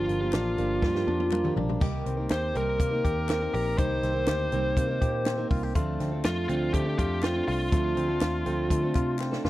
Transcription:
Already playing: F3 A#3 D4 F4 G4
0.08 G1 A#3, closed hi-hat
0.20 F3 A#3 D4 G4
0.33 A1 D4, snare, clap, closed hi-hat
0.57 G1 F3 A#3 D4 G4, closed hi-hat
0.82 G2 F3, kick, snare
0.95 F3 A#3 D4 G4, snare
1.07 F2 D4, high tom
1.20 high tom
1.32 A#3, clap, mid tom
1.44 F3 A#3 D4 G4, mid tom
1.56 A#1 D4, floor tom
1.69 floor tom
1.81 C2 D#3 G3 A#3 D#4 G4 A#4, kick, splash
2.06 C2 C4, closed hi-hat
2.17 A#3 D#4 A#4
2.30 D#2 G4 C5, snare, clap, closed hi-hat
2.54 C2 G3 A#3 C4 D#4 A#4, closed hi-hat
2.80 C3 A#3, kick, closed hi-hat
2.91 A#3 D#4 A#4
3.04 D#2 G4, kick, closed hi-hat
3.29 C4 A#4, snare, clap, closed hi-hat
3.41 A#3 D#4 A#4
3.53 A#1 G4 A#4, open hi-hat
3.77 C2 D#3 G3 A#3 D#4 G4 A#4 C5, kick, closed hi-hat
4.03 C2 C4, snare, closed hi-hat
4.14 A#3 D#4 A#4
4.27 D2 G4, snare, clap, closed hi-hat
4.52 C2 G3 A#3 C4 D#4 A#4, closed hi-hat
4.77 C3 A#3, kick, closed hi-hat
4.88 A#3 D#4 A#4
5.01 A#2 G4, kick, closed hi-hat
5.26 C4, snare, clap, closed hi-hat
5.38 A#3 D#4 A#4
5.51 C2 F4, kick, open hi-hat
5.63 G4
5.75 D2 F3 A3 C4 D4 F4 A4, kick, closed hi-hat
6.00 D2 C4, snare, closed hi-hat
6.12 C4 D4 A4
6.25 F2 F4, snare, clap, closed hi-hat
6.49 D2 F3 C4 D4 F4 A4, closed hi-hat
6.74 D3 A3 G4, kick, closed hi-hat
6.85 C4 D4 A4
6.99 F2 F4 G4, kick, closed hi-hat
7.23 C4 F4, snare, clap, closed hi-hat
7.35 C4 D4 A4
7.48 C2 F4, open hi-hat
7.72 D2 F3 A3 C4 D4 F4 A4, kick, closed hi-hat
7.97 D2 C4, closed hi-hat
8.08 C4 D4 A4
8.21 D#2 F4, snare, clap, closed hi-hat
8.45 D2 F3 C4 D4 A4, closed hi-hat
8.70 D3 A3, kick, closed hi-hat
8.82 C4 D4 A4
8.95 C3 F4, kick, clap, closed hi-hat
9.19 C4, snare, clap
9.31 C4 D4 A4, snare
9.45 F1 F4, snare

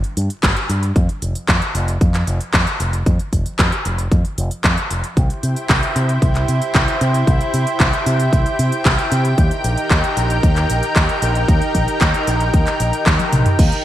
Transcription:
0.04 closed hi-hat
0.17 G2, closed hi-hat
0.30 closed hi-hat
0.43 G1, kick, clap, closed hi-hat
0.56 closed hi-hat
0.69 G2, closed hi-hat
0.83 closed hi-hat
0.96 F2, kick, closed hi-hat
1.09 closed hi-hat
1.22 F1, closed hi-hat
1.35 closed hi-hat
1.48 F2, kick, clap, closed hi-hat
1.62 closed hi-hat
1.75 F1, closed hi-hat
1.88 closed hi-hat
2.01 F2, kick, closed hi-hat
2.14 clap, closed hi-hat
2.27 F1, closed hi-hat
2.41 closed hi-hat
2.54 F2, kick, clap, closed hi-hat
2.67 closed hi-hat
2.80 F1, closed hi-hat
2.93 closed hi-hat
3.06 F2, kick, closed hi-hat
3.19 closed hi-hat
3.33 F1, kick, closed hi-hat
3.46 closed hi-hat
3.59 F2, kick, clap, closed hi-hat
3.72 closed hi-hat
3.85 F1, closed hi-hat
3.98 closed hi-hat
4.12 F2, kick, closed hi-hat
4.25 closed hi-hat
4.38 F1, closed hi-hat
4.51 closed hi-hat
4.64 F2, kick, clap, closed hi-hat
4.77 closed hi-hat
4.90 F1, closed hi-hat
5.04 closed hi-hat
5.17 C2 E4 G4 C5 G5, kick, closed hi-hat
5.30 closed hi-hat
5.43 C3, closed hi-hat
5.56 closed hi-hat
5.69 C2, kick, clap, closed hi-hat
5.83 closed hi-hat
5.96 C3, closed hi-hat
6.09 closed hi-hat
6.22 C2, kick, closed hi-hat
6.35 clap, closed hi-hat
6.48 C3, closed hi-hat
6.62 closed hi-hat
6.75 C2, kick, clap, closed hi-hat
6.88 closed hi-hat
7.01 C3, closed hi-hat
7.14 closed hi-hat
7.27 C2, kick, closed hi-hat
7.41 closed hi-hat
7.54 C3, closed hi-hat
7.67 closed hi-hat
7.80 C2, kick, clap, closed hi-hat
7.93 closed hi-hat
8.06 C3, closed hi-hat
8.20 closed hi-hat
8.33 C2, kick, closed hi-hat
8.46 closed hi-hat
8.59 C3, closed hi-hat
8.72 closed hi-hat
8.85 C2, kick, clap, closed hi-hat
8.98 closed hi-hat
9.12 C3, closed hi-hat
9.25 closed hi-hat
9.38 D#2 D#4 A#4, kick, closed hi-hat
9.51 closed hi-hat
9.64 A#1, closed hi-hat
9.78 closed hi-hat
9.91 D#2, kick, clap, closed hi-hat
10.04 closed hi-hat
10.17 A#1, closed hi-hat
10.30 closed hi-hat
10.43 D#2, kick, closed hi-hat
10.56 clap, closed hi-hat
10.69 A#1, closed hi-hat
10.83 closed hi-hat
10.96 D#2, kick, clap, closed hi-hat
11.09 closed hi-hat
11.22 A#1, closed hi-hat
11.35 closed hi-hat
11.48 D#2, kick, closed hi-hat
11.62 closed hi-hat
11.75 A#1, kick, closed hi-hat
11.88 closed hi-hat
12.01 D#2, kick, clap, closed hi-hat
12.14 closed hi-hat
12.27 A#1, closed hi-hat
12.40 closed hi-hat
12.54 D#2, kick, closed hi-hat
12.67 clap, closed hi-hat
12.80 A#1, closed hi-hat
12.93 closed hi-hat
13.06 D#2, kick, clap, closed hi-hat, high tom
13.19 closed hi-hat, high tom
13.33 A#1, closed hi-hat, mid tom
13.46 closed hi-hat, mid tom
13.59 D#2 D#4 G4 A#4 G5, kick, closed hi-hat, crash
13.72 closed hi-hat

